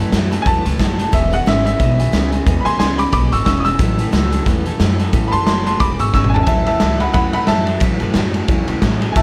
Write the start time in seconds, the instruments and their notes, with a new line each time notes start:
0.00 clean electric guitar A2 E3, steel-string acoustic guitar F#3 A3 C#4 A4
0.12 upright bass F#2, clean electric guitar A2 F#3, steel-string acoustic guitar A2 E3 F#3 A3 C#4 A4, snare, closed hi-hat
0.31 clean electric guitar A2 F#3, steel-string acoustic guitar F#3 A3 C#4 A4, closed hi-hat
0.42 upright bass E2, clean electric guitar A2 E3, steel-string acoustic guitar F#3 A3, upright piano G#5, kick, closed hi-hat
0.47 steel-string acoustic guitar C#4 A4, upright piano A5
0.64 upright bass C#2, clean electric guitar A2 E3, steel-string acoustic guitar F#3 A3 C#4 A4, closed hi-hat
0.79 upright bass F#1, steel-string acoustic guitar A2 E3 F#3 A3 C#4 A4, clean electric guitar A2 F#3, kick, snare, closed hi-hat
0.99 clean electric guitar A2 F#3, steel-string acoustic guitar F#3 A3 C#4 A4, closed hi-hat
1.12 upright bass E1, clean electric guitar E2 B2, steel-string acoustic guitar E3 G#3 B3 C#4 G#4, upright piano E5, kick, closed hi-hat
1.31 clean electric guitar E2 B2, steel-string acoustic guitar B3 C#4 G#4, upright piano F#5, closed hi-hat
1.46 upright bass G#1, clean electric guitar E2 C#3, steel-string acoustic guitar E3 G#3 B3 C#4 G#4, upright piano E5, snare, closed hi-hat
1.65 clean electric guitar E2 C#3, steel-string acoustic guitar B3 C#4 G#4, upright piano E5, closed hi-hat
1.79 upright bass B1, clean electric guitar E2 B2, steel-string acoustic guitar G#3 B3 C#4 G#4, kick, closed hi-hat
1.99 clean electric guitar E2 B2, steel-string acoustic guitar B3 C#4 G#4, closed hi-hat
2.12 upright bass C#2, clean electric guitar E2 C#3, steel-string acoustic guitar E3 G#3 B3 C#4 G#4, snare, closed hi-hat
2.32 clean electric guitar E2 C#3, steel-string acoustic guitar B3 C#4 G#4, closed hi-hat
2.46 upright bass E2, clean electric guitar E2 B2, steel-string acoustic guitar E3 G#3 B3 C#4 G#4, kick, closed hi-hat
2.61 upright piano B5
2.65 upright bass D2, clean electric guitar E2 B2, steel-string acoustic guitar B3 C#4 G#4, upright piano G#5 C6, snare, closed hi-hat
2.79 upright bass C#2, clean electric guitar E2 C#3, steel-string acoustic guitar E3 G#3 B3 C#4 G#4, upright piano G#5 C6, snare, closed hi-hat
2.98 clean electric guitar E2 C#3, steel-string acoustic guitar B3 C#4 G#4, upright piano B5 D6, closed hi-hat
3.12 upright bass B1, clean electric guitar E2 B2, steel-string acoustic guitar G#3 B3 C#4 G#4, upright piano B5 D6, kick, closed hi-hat
3.32 upright bass G#1, clean electric guitar E2 B2, steel-string acoustic guitar B3 C#4 G#4, upright piano C#6 E6, closed hi-hat
3.45 upright bass E1, clean electric guitar E2 C#3, steel-string acoustic guitar E3 G#3 B3 C#4 G#4, upright piano C#6 E6, kick, snare, closed hi-hat
3.60 upright piano D#6
3.65 clean electric guitar E2 C#3, steel-string acoustic guitar B3 C#4 G#4, upright piano E6, closed hi-hat
3.79 upright bass A1, steel-string acoustic guitar A2 E3 F#3 A3 C#4 A4, clean electric guitar A2 E3, kick, closed hi-hat
3.99 clean electric guitar A2 E3, steel-string acoustic guitar F#3 A3 C#4 A4, closed hi-hat
4.12 upright bass C#2, steel-string acoustic guitar A2 E3 F#3 A3 C#4 A4, clean electric guitar A2 F#3, snare, closed hi-hat
4.32 clean electric guitar A2 F#3, steel-string acoustic guitar F#3 A3 C#4 A4, closed hi-hat
4.46 upright bass E2, clean electric guitar A2 E3, steel-string acoustic guitar F#3 A3 C#4 A4, kick, closed hi-hat
4.66 clean electric guitar A2 E3, steel-string acoustic guitar F#3 A3 C#4 A4, closed hi-hat
4.80 upright bass F#2, steel-string acoustic guitar A2 E3 F#3 A3 C#4 A4, clean electric guitar A2 F#3, snare, closed hi-hat
4.99 clean electric guitar A2 F#3, steel-string acoustic guitar F#3 A3 C#4 A4, closed hi-hat
5.13 steel-string acoustic guitar A2 E3 F#3 A3 C#4 A4, upright bass A2, clean electric guitar A2 E3, kick, closed hi-hat
5.28 upright piano A5 B5
5.32 upright bass F#2, clean electric guitar A2 E3, steel-string acoustic guitar F#3 A3 C#4 A4, upright piano C6, closed hi-hat
5.46 upright bass F#1, clean electric guitar A2 F#3, steel-string acoustic guitar A2 E3 F#3 A3 C#4 A4, upright piano A5 C6, snare, closed hi-hat
5.66 clean electric guitar A2 F#3, steel-string acoustic guitar F#3 A3 C#4 A4, upright piano A5 C6, closed hi-hat
5.80 upright bass E1, clean electric guitar E2 B2, steel-string acoustic guitar G#3 B3 C#4 G#4, upright piano B5 D6, kick, closed hi-hat
5.99 upright bass G#1, clean electric guitar E2 B2, steel-string acoustic guitar B3 C#4 G#4, upright piano C#6 E6, closed hi-hat
6.13 upright bass G#1, clean electric guitar E2 C#3, steel-string acoustic guitar E3 G#3 B3 C#4 G#4, upright piano C#6 E6, kick, snare
6.24 mid tom
6.30 upright piano G#5
6.34 clean electric guitar E2 C#3, steel-string acoustic guitar B3 C#4 G#4, upright piano A5, floor tom
6.43 upright piano G#5, ride
6.47 upright bass A1, steel-string acoustic guitar A2 E3 F#3 A3 C#4 A4, clean electric guitar A2 E3, upright piano E5 A5, kick
6.66 clean electric guitar A2 E3, steel-string acoustic guitar F#3 A3 C#4 A4, upright piano E5 A5, snare, ride
6.80 upright bass C#2, steel-string acoustic guitar A2 E3 F#3 A3 C#4 A4, clean electric guitar A2 F#3, upright piano E5 A5, snare, ride
7.00 clean electric guitar A2 F#3, steel-string acoustic guitar F#3 A3 C#4 A4, upright piano F#5 B5, ride
7.13 upright bass E2, clean electric guitar A2 E3, steel-string acoustic guitar F#3 A3 C#4 A4, upright piano F#5 B5, kick, ride
7.33 clean electric guitar A2 E3, steel-string acoustic guitar F#3 A3 C#4 A4, upright piano F#5 B5, ride
7.47 upright bass F#2, steel-string acoustic guitar A2 E3 F#3 A3 C#4 A4, clean electric guitar A2 F#3, upright piano E5 A5, snare, ride
7.67 clean electric guitar A2 F#3, steel-string acoustic guitar F#3 A3 C#4 A4, ride
7.80 steel-string acoustic guitar A2 E3 F#3 A3 C#4 A4, upright bass A2, clean electric guitar A2 E3, kick, ride
8.00 upright bass F#2, clean electric guitar A2 E3, steel-string acoustic guitar F#3 A3 C#4 A4, ride
8.14 upright bass F#2, steel-string acoustic guitar A2 E3 F#3 A3 C#4 A4, clean electric guitar A2 F#3, snare, ride
8.34 clean electric guitar A2 F#3, steel-string acoustic guitar F#3 A3 C#4 A4, ride
8.48 upright bass E2, clean electric guitar A2 E3, steel-string acoustic guitar F#3 A3 C#4 A4, kick, ride
8.68 upright bass C#2, clean electric guitar A2 E3, steel-string acoustic guitar F#3 A3 C#4 A4, ride
8.82 upright bass A1, clean electric guitar A2 F#3, steel-string acoustic guitar A2 E3 F#3 A3 C#4 A4, kick, snare, ride
9.01 clean electric guitar A2 F#3, steel-string acoustic guitar F#3 A3 C#4 A4, ride
9.12 upright bass A1, steel-string acoustic guitar A2, upright piano G#5, kick, ride
9.16 clean electric guitar A2 E3, steel-string acoustic guitar E3 F#3 A3 C#4 A4, upright piano E5 A5